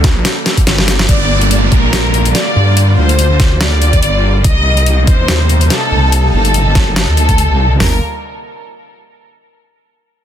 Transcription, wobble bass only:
0.67 G1
1.09 G1
1.72 A#1
1.93 A#1
2.56 G2
2.98 D2
3.40 D2
4.03 G1
4.45 C2
5.07 D#2
5.28 D#2
5.91 C2
6.33 G1
6.75 G1
7.08 D2
7.50 C2
7.80 G1

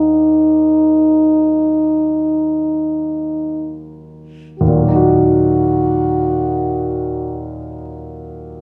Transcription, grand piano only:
Already playing: D#2 D#3 F#3 A#3
4.61 D#2
4.67 A#2
4.75 F#3
4.82 A#3
4.89 D#4
4.96 F#4

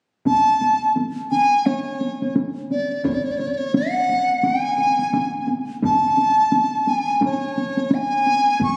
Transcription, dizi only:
0.27 A5
1.30 G#5
1.66 C#5
2.71 D5
3.04 C#5
3.14 D5
3.24 C#5
3.31 D5
3.37 C#5
3.47 D5
3.57 C#5
3.75 F#5
4.45 G#5
5.84 A5
6.88 G#5
7.26 C#5
7.94 G#5
8.63 C#6

